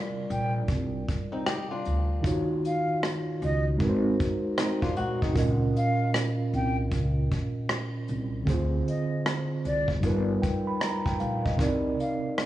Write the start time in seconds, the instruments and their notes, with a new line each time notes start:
Already playing: tine electric piano C3 G3 D4 F4 A#4 D5
0.30 upright bass A#1, flute G5, closed hi-hat
0.68 upright bass C2, kick, closed hi-hat
1.08 kick, closed hi-hat
1.32 nylon-string guitar C4 D#4
1.46 nylon-string guitar D#4 G4, cross-stick, closed hi-hat
1.71 nylon-string guitar D4 F4
1.85 upright bass D2, closed hi-hat
2.21 upright bass D#2, tine electric piano D#3 D#4 F4, kick, closed hi-hat
2.26 tine electric piano F#4 C#5
2.65 flute F5, closed hi-hat
3.03 cross-stick, closed hi-hat
3.42 upright bass C#2, flute D#5, closed hi-hat
3.77 upright bass G#1, tine electric piano G#3 D#4 F#4, kick, closed hi-hat
3.82 tine electric piano A#4 B4
3.90 tine electric piano C5
4.20 kick, closed hi-hat
4.58 nylon-string guitar C4 D#4, cross-stick, closed hi-hat
4.82 nylon-string guitar D4 F4, kick
4.96 upright bass A#1, nylon-string guitar D#4 F#4, closed hi-hat
5.22 nylon-string guitar C4 D#4, kick
5.32 upright bass C#2, tine electric piano A#2 C#4 F4, kick
5.37 tine electric piano A#4 D#5, closed hi-hat
5.76 flute F5, closed hi-hat
6.14 cross-stick, closed hi-hat
6.53 upright bass C2, flute G5, closed hi-hat
6.91 upright bass C#2, kick, closed hi-hat
7.31 kick, closed hi-hat
7.69 cross-stick, closed hi-hat
8.08 upright bass C2, closed hi-hat
8.44 upright bass D2, tine electric piano D3 C4 E4, kick
8.48 tine electric piano G#4 C5, closed hi-hat
8.53 tine electric piano F4
8.88 flute D#5, closed hi-hat
9.26 cross-stick, closed hi-hat
9.65 upright bass C2, flute D5, closed hi-hat
9.88 kick
10.01 upright bass G1, tine electric piano G3 D#4 F4, kick, closed hi-hat
10.05 tine electric piano A#4 B4
10.42 tine electric piano G5, kick, closed hi-hat
10.67 tine electric piano B5
10.80 tine electric piano A#5, cross-stick, closed hi-hat
11.06 tine electric piano G5, kick
11.20 upright bass A#1, tine electric piano F5, closed hi-hat
11.45 tine electric piano D#5, kick
11.56 upright bass C2, tine electric piano C3 C4 D#4, kick, closed hi-hat
11.60 tine electric piano A#4 D5
12.00 flute F5, closed hi-hat
12.38 cross-stick, closed hi-hat